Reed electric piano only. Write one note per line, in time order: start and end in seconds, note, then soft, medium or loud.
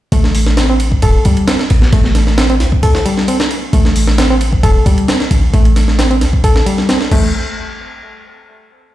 0.12 0.56 A3 medium
0.57 0.66 C4 medium
0.70 0.74 C4 medium
1.03 1.24 A4 medium
1.25 1.47 G3 medium
1.48 1.56 C4 medium
1.93 2.37 A3 medium
2.38 2.46 C4 medium
2.50 2.54 C4 medium
2.83 3.04 A4 medium
3.06 3.27 G3 medium
3.28 3.36 C4 medium
3.73 4.17 A3 medium
4.18 4.27 C4 medium
4.30 4.35 C4 medium
4.63 4.85 A4 medium
4.86 5.07 G3 medium
5.08 5.17 C4 medium
5.54 5.98 A3 medium
5.99 6.07 C4 medium
6.10 6.15 C4 medium
6.44 6.65 A4 medium
6.66 6.88 G3 medium
6.89 6.98 C4 medium
7.12 7.33 A3 loud